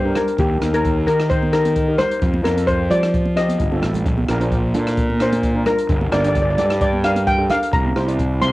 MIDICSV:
0, 0, Header, 1, 5, 480
1, 0, Start_track
1, 0, Key_signature, -2, "major"
1, 0, Tempo, 459067
1, 404, Time_signature, 4, 2, 24, 8
1, 8910, End_track
2, 0, Start_track
2, 0, Title_t, "Steel pan"
2, 0, Program_c, 0, 114
2, 0, Note_on_c, 0, 72, 78
2, 156, Note_off_c, 0, 72, 0
2, 171, Note_on_c, 0, 70, 73
2, 414, Note_on_c, 0, 67, 73
2, 415, Note_off_c, 0, 70, 0
2, 777, Note_on_c, 0, 70, 87
2, 787, Note_off_c, 0, 67, 0
2, 1107, Note_off_c, 0, 70, 0
2, 1119, Note_on_c, 0, 70, 81
2, 1356, Note_on_c, 0, 72, 90
2, 1369, Note_off_c, 0, 70, 0
2, 1466, Note_off_c, 0, 72, 0
2, 1597, Note_on_c, 0, 70, 94
2, 2073, Note_on_c, 0, 72, 91
2, 2096, Note_off_c, 0, 70, 0
2, 2554, Note_on_c, 0, 70, 75
2, 2574, Note_off_c, 0, 72, 0
2, 2794, Note_on_c, 0, 72, 92
2, 2807, Note_off_c, 0, 70, 0
2, 3041, Note_on_c, 0, 74, 98
2, 3047, Note_off_c, 0, 72, 0
2, 3521, Note_on_c, 0, 75, 89
2, 3538, Note_off_c, 0, 74, 0
2, 4202, Note_off_c, 0, 75, 0
2, 5458, Note_on_c, 0, 72, 72
2, 5925, Note_on_c, 0, 70, 79
2, 5946, Note_off_c, 0, 72, 0
2, 6404, Note_on_c, 0, 74, 80
2, 6420, Note_off_c, 0, 70, 0
2, 6478, Note_off_c, 0, 74, 0
2, 6491, Note_on_c, 0, 74, 60
2, 6557, Note_off_c, 0, 74, 0
2, 6570, Note_on_c, 0, 74, 78
2, 6645, Note_off_c, 0, 74, 0
2, 6656, Note_on_c, 0, 74, 64
2, 6702, Note_off_c, 0, 74, 0
2, 6715, Note_on_c, 0, 74, 69
2, 6788, Note_off_c, 0, 74, 0
2, 6801, Note_on_c, 0, 74, 63
2, 6869, Note_off_c, 0, 74, 0
2, 6882, Note_on_c, 0, 74, 73
2, 6944, Note_off_c, 0, 74, 0
2, 6956, Note_on_c, 0, 74, 64
2, 7041, Note_off_c, 0, 74, 0
2, 7127, Note_on_c, 0, 74, 92
2, 7365, Note_on_c, 0, 77, 86
2, 7374, Note_off_c, 0, 74, 0
2, 7602, Note_on_c, 0, 79, 94
2, 7613, Note_off_c, 0, 77, 0
2, 7848, Note_on_c, 0, 77, 91
2, 7851, Note_off_c, 0, 79, 0
2, 8083, Note_on_c, 0, 82, 88
2, 8094, Note_off_c, 0, 77, 0
2, 8531, Note_off_c, 0, 82, 0
2, 8800, Note_on_c, 0, 84, 97
2, 8910, Note_off_c, 0, 84, 0
2, 8910, End_track
3, 0, Start_track
3, 0, Title_t, "Steel pan"
3, 0, Program_c, 1, 114
3, 45, Note_on_c, 1, 62, 75
3, 46, Note_on_c, 1, 67, 62
3, 49, Note_on_c, 1, 70, 83
3, 116, Note_off_c, 1, 62, 0
3, 116, Note_off_c, 1, 67, 0
3, 118, Note_off_c, 1, 70, 0
3, 161, Note_on_c, 1, 62, 64
3, 165, Note_on_c, 1, 67, 64
3, 168, Note_on_c, 1, 70, 75
3, 402, Note_off_c, 1, 62, 0
3, 404, Note_off_c, 1, 67, 0
3, 406, Note_off_c, 1, 70, 0
3, 642, Note_on_c, 1, 67, 65
3, 644, Note_on_c, 1, 70, 72
3, 645, Note_on_c, 1, 63, 71
3, 719, Note_off_c, 1, 67, 0
3, 720, Note_off_c, 1, 70, 0
3, 721, Note_off_c, 1, 63, 0
3, 769, Note_on_c, 1, 63, 68
3, 770, Note_on_c, 1, 67, 58
3, 771, Note_on_c, 1, 70, 77
3, 985, Note_off_c, 1, 63, 0
3, 985, Note_off_c, 1, 67, 0
3, 986, Note_off_c, 1, 70, 0
3, 1128, Note_on_c, 1, 63, 70
3, 1129, Note_on_c, 1, 67, 68
3, 1132, Note_on_c, 1, 70, 82
3, 1417, Note_off_c, 1, 63, 0
3, 1418, Note_off_c, 1, 67, 0
3, 1419, Note_off_c, 1, 70, 0
3, 1604, Note_on_c, 1, 63, 71
3, 1604, Note_on_c, 1, 67, 68
3, 1608, Note_on_c, 1, 69, 77
3, 1821, Note_off_c, 1, 67, 0
3, 1822, Note_off_c, 1, 63, 0
3, 1824, Note_off_c, 1, 69, 0
3, 1965, Note_on_c, 1, 70, 84
3, 1966, Note_on_c, 1, 67, 66
3, 1968, Note_on_c, 1, 63, 71
3, 2036, Note_off_c, 1, 70, 0
3, 2037, Note_off_c, 1, 63, 0
3, 2037, Note_off_c, 1, 67, 0
3, 2082, Note_on_c, 1, 63, 63
3, 2083, Note_on_c, 1, 70, 77
3, 2323, Note_off_c, 1, 63, 0
3, 2324, Note_off_c, 1, 70, 0
3, 2555, Note_on_c, 1, 60, 73
3, 2555, Note_on_c, 1, 65, 63
3, 2556, Note_on_c, 1, 69, 71
3, 2636, Note_off_c, 1, 60, 0
3, 2636, Note_off_c, 1, 65, 0
3, 2636, Note_off_c, 1, 69, 0
3, 2682, Note_on_c, 1, 65, 66
3, 2683, Note_on_c, 1, 69, 70
3, 2684, Note_on_c, 1, 60, 63
3, 2902, Note_off_c, 1, 65, 0
3, 2902, Note_off_c, 1, 69, 0
3, 2903, Note_off_c, 1, 60, 0
3, 3034, Note_on_c, 1, 60, 69
3, 3039, Note_on_c, 1, 65, 63
3, 3042, Note_on_c, 1, 67, 76
3, 3331, Note_off_c, 1, 60, 0
3, 3333, Note_off_c, 1, 65, 0
3, 3334, Note_off_c, 1, 67, 0
3, 3514, Note_on_c, 1, 60, 73
3, 3515, Note_on_c, 1, 65, 66
3, 3517, Note_on_c, 1, 67, 80
3, 3737, Note_off_c, 1, 60, 0
3, 3738, Note_off_c, 1, 65, 0
3, 3739, Note_off_c, 1, 67, 0
3, 3886, Note_on_c, 1, 60, 72
3, 3887, Note_on_c, 1, 65, 66
3, 3888, Note_on_c, 1, 69, 83
3, 3957, Note_off_c, 1, 60, 0
3, 3958, Note_off_c, 1, 65, 0
3, 3958, Note_off_c, 1, 69, 0
3, 4002, Note_on_c, 1, 60, 59
3, 4003, Note_on_c, 1, 69, 73
3, 4004, Note_on_c, 1, 65, 59
3, 4244, Note_off_c, 1, 60, 0
3, 4245, Note_off_c, 1, 65, 0
3, 4245, Note_off_c, 1, 69, 0
3, 4481, Note_on_c, 1, 65, 74
3, 4482, Note_on_c, 1, 62, 83
3, 4484, Note_on_c, 1, 70, 94
3, 4560, Note_off_c, 1, 62, 0
3, 4560, Note_off_c, 1, 65, 0
3, 4561, Note_off_c, 1, 70, 0
3, 4607, Note_on_c, 1, 65, 72
3, 4608, Note_on_c, 1, 62, 88
3, 4611, Note_on_c, 1, 72, 84
3, 4824, Note_off_c, 1, 65, 0
3, 4825, Note_off_c, 1, 62, 0
3, 4826, Note_off_c, 1, 72, 0
3, 4963, Note_on_c, 1, 62, 82
3, 4964, Note_on_c, 1, 69, 87
3, 4965, Note_on_c, 1, 65, 72
3, 5256, Note_off_c, 1, 62, 0
3, 5256, Note_off_c, 1, 65, 0
3, 5256, Note_off_c, 1, 69, 0
3, 5435, Note_on_c, 1, 62, 71
3, 5440, Note_on_c, 1, 65, 67
3, 5440, Note_on_c, 1, 70, 79
3, 5658, Note_off_c, 1, 62, 0
3, 5660, Note_off_c, 1, 65, 0
3, 5661, Note_off_c, 1, 70, 0
3, 5802, Note_on_c, 1, 65, 68
3, 5805, Note_on_c, 1, 70, 80
3, 5806, Note_on_c, 1, 62, 68
3, 5875, Note_off_c, 1, 65, 0
3, 5877, Note_off_c, 1, 70, 0
3, 5878, Note_off_c, 1, 62, 0
3, 5924, Note_on_c, 1, 62, 63
3, 5925, Note_on_c, 1, 65, 62
3, 5926, Note_on_c, 1, 70, 66
3, 6165, Note_off_c, 1, 62, 0
3, 6166, Note_off_c, 1, 65, 0
3, 6166, Note_off_c, 1, 70, 0
3, 6398, Note_on_c, 1, 62, 71
3, 6399, Note_on_c, 1, 67, 70
3, 6403, Note_on_c, 1, 70, 81
3, 6478, Note_off_c, 1, 62, 0
3, 6479, Note_off_c, 1, 67, 0
3, 6481, Note_off_c, 1, 70, 0
3, 6529, Note_on_c, 1, 62, 74
3, 6529, Note_on_c, 1, 67, 63
3, 6529, Note_on_c, 1, 69, 69
3, 6746, Note_off_c, 1, 62, 0
3, 6746, Note_off_c, 1, 67, 0
3, 6746, Note_off_c, 1, 69, 0
3, 6879, Note_on_c, 1, 67, 68
3, 6880, Note_on_c, 1, 62, 66
3, 6883, Note_on_c, 1, 69, 75
3, 7174, Note_off_c, 1, 62, 0
3, 7174, Note_off_c, 1, 67, 0
3, 7176, Note_off_c, 1, 69, 0
3, 7357, Note_on_c, 1, 62, 73
3, 7358, Note_on_c, 1, 67, 66
3, 7361, Note_on_c, 1, 70, 79
3, 7579, Note_off_c, 1, 62, 0
3, 7580, Note_off_c, 1, 67, 0
3, 7581, Note_off_c, 1, 70, 0
3, 7716, Note_on_c, 1, 67, 69
3, 7719, Note_on_c, 1, 62, 80
3, 7720, Note_on_c, 1, 69, 80
3, 7793, Note_off_c, 1, 67, 0
3, 7794, Note_off_c, 1, 62, 0
3, 7795, Note_off_c, 1, 69, 0
3, 7834, Note_on_c, 1, 62, 65
3, 7837, Note_on_c, 1, 67, 62
3, 7839, Note_on_c, 1, 70, 75
3, 8080, Note_off_c, 1, 62, 0
3, 8082, Note_off_c, 1, 67, 0
3, 8083, Note_off_c, 1, 70, 0
3, 8321, Note_on_c, 1, 64, 75
3, 8321, Note_on_c, 1, 67, 72
3, 8325, Note_on_c, 1, 72, 90
3, 8400, Note_off_c, 1, 64, 0
3, 8400, Note_off_c, 1, 67, 0
3, 8402, Note_off_c, 1, 72, 0
3, 8442, Note_on_c, 1, 64, 71
3, 8443, Note_on_c, 1, 67, 64
3, 8446, Note_on_c, 1, 74, 78
3, 8662, Note_off_c, 1, 64, 0
3, 8662, Note_off_c, 1, 67, 0
3, 8664, Note_off_c, 1, 74, 0
3, 8792, Note_on_c, 1, 64, 73
3, 8796, Note_on_c, 1, 67, 69
3, 8798, Note_on_c, 1, 72, 88
3, 8910, Note_off_c, 1, 64, 0
3, 8910, Note_off_c, 1, 67, 0
3, 8910, Note_off_c, 1, 72, 0
3, 8910, End_track
4, 0, Start_track
4, 0, Title_t, "Fingered electric bass"
4, 0, Program_c, 2, 33
4, 0, Note_on_c, 2, 43, 78
4, 123, Note_off_c, 2, 43, 0
4, 405, Note_on_c, 2, 39, 112
4, 631, Note_off_c, 2, 39, 0
4, 646, Note_on_c, 2, 39, 93
4, 1098, Note_off_c, 2, 39, 0
4, 1121, Note_on_c, 2, 51, 85
4, 2041, Note_off_c, 2, 51, 0
4, 2318, Note_on_c, 2, 41, 105
4, 2547, Note_off_c, 2, 41, 0
4, 2559, Note_on_c, 2, 41, 90
4, 3014, Note_off_c, 2, 41, 0
4, 3036, Note_on_c, 2, 53, 82
4, 3719, Note_off_c, 2, 53, 0
4, 3762, Note_on_c, 2, 31, 78
4, 3979, Note_off_c, 2, 31, 0
4, 4000, Note_on_c, 2, 33, 79
4, 4219, Note_off_c, 2, 33, 0
4, 4243, Note_on_c, 2, 34, 105
4, 4470, Note_off_c, 2, 34, 0
4, 4481, Note_on_c, 2, 34, 89
4, 4936, Note_off_c, 2, 34, 0
4, 4957, Note_on_c, 2, 46, 80
4, 5880, Note_off_c, 2, 46, 0
4, 6161, Note_on_c, 2, 31, 108
4, 6387, Note_off_c, 2, 31, 0
4, 6393, Note_on_c, 2, 31, 99
4, 6852, Note_off_c, 2, 31, 0
4, 6876, Note_on_c, 2, 43, 80
4, 7799, Note_off_c, 2, 43, 0
4, 8083, Note_on_c, 2, 36, 108
4, 8311, Note_off_c, 2, 36, 0
4, 8324, Note_on_c, 2, 36, 95
4, 8777, Note_off_c, 2, 36, 0
4, 8800, Note_on_c, 2, 48, 88
4, 8910, Note_off_c, 2, 48, 0
4, 8910, End_track
5, 0, Start_track
5, 0, Title_t, "Drums"
5, 162, Note_on_c, 9, 37, 72
5, 162, Note_on_c, 9, 42, 68
5, 168, Note_on_c, 9, 64, 71
5, 267, Note_off_c, 9, 37, 0
5, 267, Note_off_c, 9, 42, 0
5, 273, Note_off_c, 9, 64, 0
5, 291, Note_on_c, 9, 42, 53
5, 396, Note_off_c, 9, 42, 0
5, 400, Note_on_c, 9, 42, 58
5, 405, Note_on_c, 9, 36, 115
5, 505, Note_off_c, 9, 42, 0
5, 509, Note_off_c, 9, 36, 0
5, 642, Note_on_c, 9, 63, 68
5, 647, Note_on_c, 9, 37, 76
5, 647, Note_on_c, 9, 42, 80
5, 747, Note_off_c, 9, 63, 0
5, 752, Note_off_c, 9, 37, 0
5, 752, Note_off_c, 9, 42, 0
5, 773, Note_on_c, 9, 42, 59
5, 878, Note_off_c, 9, 42, 0
5, 886, Note_on_c, 9, 36, 85
5, 887, Note_on_c, 9, 42, 61
5, 991, Note_off_c, 9, 36, 0
5, 992, Note_off_c, 9, 42, 0
5, 1127, Note_on_c, 9, 42, 80
5, 1231, Note_off_c, 9, 42, 0
5, 1251, Note_on_c, 9, 37, 73
5, 1251, Note_on_c, 9, 42, 57
5, 1355, Note_off_c, 9, 37, 0
5, 1355, Note_off_c, 9, 42, 0
5, 1365, Note_on_c, 9, 42, 59
5, 1366, Note_on_c, 9, 36, 105
5, 1470, Note_off_c, 9, 42, 0
5, 1471, Note_off_c, 9, 36, 0
5, 1490, Note_on_c, 9, 63, 63
5, 1595, Note_off_c, 9, 63, 0
5, 1601, Note_on_c, 9, 37, 70
5, 1601, Note_on_c, 9, 42, 76
5, 1705, Note_off_c, 9, 37, 0
5, 1705, Note_off_c, 9, 42, 0
5, 1725, Note_on_c, 9, 42, 66
5, 1726, Note_on_c, 9, 63, 71
5, 1830, Note_off_c, 9, 42, 0
5, 1831, Note_off_c, 9, 63, 0
5, 1836, Note_on_c, 9, 42, 61
5, 1842, Note_on_c, 9, 36, 75
5, 1941, Note_off_c, 9, 42, 0
5, 1946, Note_off_c, 9, 36, 0
5, 2077, Note_on_c, 9, 64, 69
5, 2078, Note_on_c, 9, 37, 78
5, 2078, Note_on_c, 9, 42, 81
5, 2182, Note_off_c, 9, 37, 0
5, 2182, Note_off_c, 9, 42, 0
5, 2182, Note_off_c, 9, 64, 0
5, 2207, Note_on_c, 9, 42, 60
5, 2312, Note_off_c, 9, 42, 0
5, 2317, Note_on_c, 9, 42, 71
5, 2321, Note_on_c, 9, 36, 113
5, 2421, Note_off_c, 9, 42, 0
5, 2426, Note_off_c, 9, 36, 0
5, 2443, Note_on_c, 9, 63, 71
5, 2547, Note_off_c, 9, 63, 0
5, 2559, Note_on_c, 9, 63, 70
5, 2563, Note_on_c, 9, 37, 84
5, 2563, Note_on_c, 9, 42, 87
5, 2664, Note_off_c, 9, 63, 0
5, 2668, Note_off_c, 9, 37, 0
5, 2668, Note_off_c, 9, 42, 0
5, 2693, Note_on_c, 9, 42, 67
5, 2798, Note_off_c, 9, 42, 0
5, 2804, Note_on_c, 9, 36, 77
5, 2804, Note_on_c, 9, 42, 58
5, 2908, Note_off_c, 9, 36, 0
5, 2908, Note_off_c, 9, 42, 0
5, 3040, Note_on_c, 9, 64, 71
5, 3045, Note_on_c, 9, 42, 79
5, 3144, Note_off_c, 9, 64, 0
5, 3149, Note_off_c, 9, 42, 0
5, 3170, Note_on_c, 9, 37, 70
5, 3170, Note_on_c, 9, 42, 61
5, 3275, Note_off_c, 9, 37, 0
5, 3275, Note_off_c, 9, 42, 0
5, 3282, Note_on_c, 9, 42, 59
5, 3283, Note_on_c, 9, 36, 102
5, 3387, Note_off_c, 9, 42, 0
5, 3388, Note_off_c, 9, 36, 0
5, 3403, Note_on_c, 9, 63, 55
5, 3508, Note_off_c, 9, 63, 0
5, 3523, Note_on_c, 9, 37, 77
5, 3523, Note_on_c, 9, 42, 75
5, 3628, Note_off_c, 9, 37, 0
5, 3628, Note_off_c, 9, 42, 0
5, 3644, Note_on_c, 9, 63, 69
5, 3654, Note_on_c, 9, 42, 66
5, 3749, Note_off_c, 9, 63, 0
5, 3759, Note_off_c, 9, 42, 0
5, 3761, Note_on_c, 9, 42, 58
5, 3763, Note_on_c, 9, 36, 80
5, 3865, Note_off_c, 9, 42, 0
5, 3867, Note_off_c, 9, 36, 0
5, 3889, Note_on_c, 9, 63, 55
5, 3994, Note_off_c, 9, 63, 0
5, 3998, Note_on_c, 9, 64, 57
5, 4002, Note_on_c, 9, 37, 68
5, 4002, Note_on_c, 9, 42, 74
5, 4103, Note_off_c, 9, 64, 0
5, 4107, Note_off_c, 9, 37, 0
5, 4107, Note_off_c, 9, 42, 0
5, 4123, Note_on_c, 9, 64, 77
5, 4131, Note_on_c, 9, 42, 56
5, 4228, Note_off_c, 9, 64, 0
5, 4236, Note_off_c, 9, 42, 0
5, 4244, Note_on_c, 9, 36, 106
5, 4244, Note_on_c, 9, 42, 60
5, 4348, Note_off_c, 9, 36, 0
5, 4349, Note_off_c, 9, 42, 0
5, 4370, Note_on_c, 9, 63, 76
5, 4474, Note_off_c, 9, 63, 0
5, 4481, Note_on_c, 9, 63, 64
5, 4482, Note_on_c, 9, 37, 85
5, 4482, Note_on_c, 9, 42, 82
5, 4586, Note_off_c, 9, 63, 0
5, 4587, Note_off_c, 9, 37, 0
5, 4587, Note_off_c, 9, 42, 0
5, 4610, Note_on_c, 9, 42, 57
5, 4715, Note_off_c, 9, 42, 0
5, 4722, Note_on_c, 9, 36, 85
5, 4723, Note_on_c, 9, 42, 61
5, 4827, Note_off_c, 9, 36, 0
5, 4828, Note_off_c, 9, 42, 0
5, 4959, Note_on_c, 9, 42, 81
5, 4964, Note_on_c, 9, 64, 74
5, 5064, Note_off_c, 9, 42, 0
5, 5069, Note_off_c, 9, 64, 0
5, 5092, Note_on_c, 9, 37, 78
5, 5092, Note_on_c, 9, 42, 60
5, 5197, Note_off_c, 9, 37, 0
5, 5197, Note_off_c, 9, 42, 0
5, 5199, Note_on_c, 9, 42, 62
5, 5203, Note_on_c, 9, 36, 99
5, 5304, Note_off_c, 9, 42, 0
5, 5307, Note_off_c, 9, 36, 0
5, 5331, Note_on_c, 9, 63, 66
5, 5435, Note_off_c, 9, 63, 0
5, 5439, Note_on_c, 9, 37, 72
5, 5439, Note_on_c, 9, 42, 69
5, 5543, Note_off_c, 9, 37, 0
5, 5543, Note_off_c, 9, 42, 0
5, 5567, Note_on_c, 9, 42, 66
5, 5571, Note_on_c, 9, 63, 82
5, 5672, Note_off_c, 9, 42, 0
5, 5675, Note_off_c, 9, 63, 0
5, 5680, Note_on_c, 9, 42, 59
5, 5681, Note_on_c, 9, 36, 81
5, 5784, Note_off_c, 9, 42, 0
5, 5785, Note_off_c, 9, 36, 0
5, 5915, Note_on_c, 9, 64, 73
5, 5920, Note_on_c, 9, 37, 66
5, 5920, Note_on_c, 9, 42, 70
5, 6020, Note_off_c, 9, 64, 0
5, 6025, Note_off_c, 9, 37, 0
5, 6025, Note_off_c, 9, 42, 0
5, 6049, Note_on_c, 9, 42, 66
5, 6153, Note_off_c, 9, 42, 0
5, 6160, Note_on_c, 9, 42, 63
5, 6161, Note_on_c, 9, 36, 117
5, 6264, Note_off_c, 9, 42, 0
5, 6265, Note_off_c, 9, 36, 0
5, 6287, Note_on_c, 9, 63, 81
5, 6392, Note_off_c, 9, 63, 0
5, 6400, Note_on_c, 9, 63, 69
5, 6402, Note_on_c, 9, 37, 87
5, 6402, Note_on_c, 9, 42, 82
5, 6505, Note_off_c, 9, 63, 0
5, 6506, Note_off_c, 9, 37, 0
5, 6506, Note_off_c, 9, 42, 0
5, 6528, Note_on_c, 9, 42, 66
5, 6632, Note_off_c, 9, 42, 0
5, 6642, Note_on_c, 9, 36, 82
5, 6642, Note_on_c, 9, 42, 69
5, 6746, Note_off_c, 9, 42, 0
5, 6747, Note_off_c, 9, 36, 0
5, 6879, Note_on_c, 9, 42, 84
5, 6882, Note_on_c, 9, 64, 83
5, 6983, Note_off_c, 9, 42, 0
5, 6987, Note_off_c, 9, 64, 0
5, 7008, Note_on_c, 9, 37, 83
5, 7008, Note_on_c, 9, 42, 62
5, 7113, Note_off_c, 9, 37, 0
5, 7113, Note_off_c, 9, 42, 0
5, 7120, Note_on_c, 9, 42, 65
5, 7121, Note_on_c, 9, 36, 103
5, 7225, Note_off_c, 9, 36, 0
5, 7225, Note_off_c, 9, 42, 0
5, 7246, Note_on_c, 9, 63, 67
5, 7351, Note_off_c, 9, 63, 0
5, 7362, Note_on_c, 9, 37, 77
5, 7362, Note_on_c, 9, 42, 81
5, 7466, Note_off_c, 9, 37, 0
5, 7466, Note_off_c, 9, 42, 0
5, 7487, Note_on_c, 9, 63, 79
5, 7488, Note_on_c, 9, 42, 66
5, 7591, Note_off_c, 9, 63, 0
5, 7593, Note_off_c, 9, 42, 0
5, 7602, Note_on_c, 9, 36, 83
5, 7602, Note_on_c, 9, 42, 58
5, 7706, Note_off_c, 9, 42, 0
5, 7707, Note_off_c, 9, 36, 0
5, 7838, Note_on_c, 9, 64, 79
5, 7845, Note_on_c, 9, 37, 73
5, 7845, Note_on_c, 9, 42, 82
5, 7942, Note_off_c, 9, 64, 0
5, 7949, Note_off_c, 9, 37, 0
5, 7949, Note_off_c, 9, 42, 0
5, 7974, Note_on_c, 9, 42, 59
5, 8078, Note_off_c, 9, 42, 0
5, 8080, Note_on_c, 9, 42, 62
5, 8082, Note_on_c, 9, 36, 119
5, 8184, Note_off_c, 9, 42, 0
5, 8187, Note_off_c, 9, 36, 0
5, 8206, Note_on_c, 9, 63, 73
5, 8311, Note_off_c, 9, 63, 0
5, 8320, Note_on_c, 9, 63, 61
5, 8323, Note_on_c, 9, 37, 89
5, 8323, Note_on_c, 9, 42, 79
5, 8424, Note_off_c, 9, 63, 0
5, 8427, Note_off_c, 9, 37, 0
5, 8427, Note_off_c, 9, 42, 0
5, 8452, Note_on_c, 9, 42, 64
5, 8557, Note_off_c, 9, 42, 0
5, 8563, Note_on_c, 9, 36, 88
5, 8566, Note_on_c, 9, 42, 64
5, 8668, Note_off_c, 9, 36, 0
5, 8670, Note_off_c, 9, 42, 0
5, 8800, Note_on_c, 9, 64, 73
5, 8803, Note_on_c, 9, 42, 76
5, 8905, Note_off_c, 9, 64, 0
5, 8907, Note_off_c, 9, 42, 0
5, 8910, End_track
0, 0, End_of_file